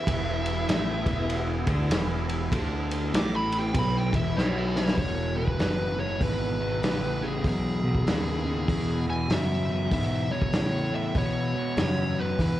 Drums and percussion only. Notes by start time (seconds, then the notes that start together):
0.07 kick, ride
0.46 ride
0.69 snare, ride
1.06 kick, ride
1.30 ride
1.67 kick, ride
1.91 snare, ride
2.29 ride
2.52 kick, ride
2.91 ride
3.14 snare, ride
3.52 ride
3.74 kick, ride
4.13 kick, ride
4.38 snare
4.76 snare
4.88 snare
4.98 kick, open hi-hat
5.48 kick
5.59 snare, open hi-hat
6.21 kick, open hi-hat
6.83 snare, open hi-hat
7.44 kick, open hi-hat
7.95 kick
8.07 snare, open hi-hat
8.68 kick, open hi-hat
9.30 snare, open hi-hat
9.91 kick, open hi-hat
10.42 kick
10.53 snare, open hi-hat
11.15 kick, open hi-hat
11.77 snare, open hi-hat
12.39 kick, open hi-hat